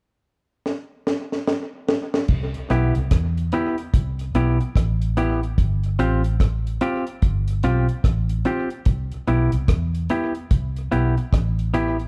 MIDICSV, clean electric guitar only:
0, 0, Header, 1, 3, 480
1, 0, Start_track
1, 0, Key_signature, 0, "major"
1, 0, Tempo, 820793
1, 1339, Time_signature, 4, 2, 24, 8
1, 7064, End_track
2, 0, Start_track
2, 0, Title_t, "Clean electric guitar"
2, 0, Program_c, 0, 27
2, 1580, Note_on_c, 0, 59, 79
2, 1584, Note_on_c, 0, 64, 83
2, 1587, Note_on_c, 0, 67, 77
2, 1712, Note_off_c, 0, 59, 0
2, 1714, Note_off_c, 0, 64, 0
2, 1716, Note_off_c, 0, 67, 0
2, 2063, Note_on_c, 0, 59, 82
2, 2068, Note_on_c, 0, 64, 92
2, 2070, Note_on_c, 0, 67, 86
2, 2194, Note_off_c, 0, 59, 0
2, 2196, Note_off_c, 0, 64, 0
2, 2197, Note_off_c, 0, 67, 0
2, 2544, Note_on_c, 0, 59, 86
2, 2547, Note_on_c, 0, 64, 78
2, 2549, Note_on_c, 0, 67, 81
2, 2675, Note_off_c, 0, 59, 0
2, 2676, Note_off_c, 0, 64, 0
2, 2677, Note_off_c, 0, 67, 0
2, 3024, Note_on_c, 0, 59, 76
2, 3028, Note_on_c, 0, 64, 76
2, 3030, Note_on_c, 0, 67, 89
2, 3155, Note_off_c, 0, 59, 0
2, 3157, Note_off_c, 0, 64, 0
2, 3158, Note_off_c, 0, 67, 0
2, 3503, Note_on_c, 0, 60, 79
2, 3507, Note_on_c, 0, 65, 76
2, 3507, Note_on_c, 0, 67, 81
2, 3634, Note_off_c, 0, 60, 0
2, 3636, Note_off_c, 0, 65, 0
2, 3637, Note_off_c, 0, 67, 0
2, 3983, Note_on_c, 0, 60, 88
2, 3986, Note_on_c, 0, 65, 93
2, 3989, Note_on_c, 0, 67, 98
2, 4115, Note_off_c, 0, 60, 0
2, 4116, Note_off_c, 0, 65, 0
2, 4117, Note_off_c, 0, 67, 0
2, 4466, Note_on_c, 0, 60, 70
2, 4469, Note_on_c, 0, 65, 86
2, 4472, Note_on_c, 0, 67, 69
2, 4596, Note_off_c, 0, 60, 0
2, 4597, Note_off_c, 0, 65, 0
2, 4599, Note_off_c, 0, 67, 0
2, 4943, Note_on_c, 0, 60, 72
2, 4946, Note_on_c, 0, 65, 84
2, 4950, Note_on_c, 0, 67, 92
2, 5075, Note_off_c, 0, 60, 0
2, 5076, Note_off_c, 0, 65, 0
2, 5078, Note_off_c, 0, 67, 0
2, 5424, Note_on_c, 0, 59, 77
2, 5428, Note_on_c, 0, 64, 87
2, 5430, Note_on_c, 0, 67, 72
2, 5555, Note_off_c, 0, 59, 0
2, 5557, Note_off_c, 0, 64, 0
2, 5558, Note_off_c, 0, 67, 0
2, 5907, Note_on_c, 0, 59, 81
2, 5910, Note_on_c, 0, 64, 92
2, 5913, Note_on_c, 0, 67, 103
2, 6036, Note_off_c, 0, 59, 0
2, 6038, Note_off_c, 0, 64, 0
2, 6039, Note_off_c, 0, 67, 0
2, 6383, Note_on_c, 0, 59, 86
2, 6385, Note_on_c, 0, 64, 75
2, 6390, Note_on_c, 0, 67, 82
2, 6515, Note_off_c, 0, 59, 0
2, 6516, Note_off_c, 0, 64, 0
2, 6518, Note_off_c, 0, 67, 0
2, 6863, Note_on_c, 0, 59, 81
2, 6867, Note_on_c, 0, 64, 97
2, 6868, Note_on_c, 0, 67, 91
2, 6995, Note_off_c, 0, 59, 0
2, 6997, Note_off_c, 0, 64, 0
2, 6997, Note_off_c, 0, 67, 0
2, 7064, End_track
3, 0, Start_track
3, 0, Title_t, "Muted clean electric guitar strokes"
3, 2700, Note_on_c, 9, 29, 41
3, 2758, Note_off_c, 9, 29, 0
3, 6541, Note_on_c, 9, 29, 38
3, 6599, Note_off_c, 9, 29, 0
3, 7064, End_track
0, 0, End_of_file